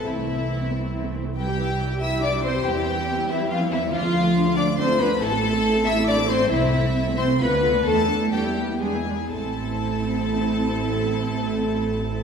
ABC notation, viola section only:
X:1
M:3/4
L:1/16
Q:1/4=137
K:Am
V:1 name="Viola section"
[CE] [A,C] [CE] [A,C] [CE] [A,C] [CE] [A,C] [CE] [A,C] [CE] [A,C] | [E,E] [G,G] [E,E] [G,G] [E,E] [G,G] [E,E] [G,G] [E,E] [G,G] [E,E] [G,G] | [E,C] [G,E] [E,C] [G,E] [E,C] [G,E] [E,C] [G,E] [E,C] [G,E] [E,C] [G,E] | [F,D] [A,F] [F,D] [A,F] [F,D] [A,F] [F,D] [A,F] [F,D] [A,F] [F,D] [A,F] |
[A,E] [CA] [A,E] [CA] [A,E] [CA] [A,E] [CA] [A,E] [CA] [A,E] [CA] | [CE] [A,C] [CE] [A,C] [CE] [A,C] [CE] [A,C] [A,F] [B,D] [A,F] [B,D] | [A,D] [B,E] [A,D] [B,E] [A,D] [B,E] [A,D] [B,E] [^G,D] [B,E] [G,D] [B,E] | [CE]12- |
[CE]12 |]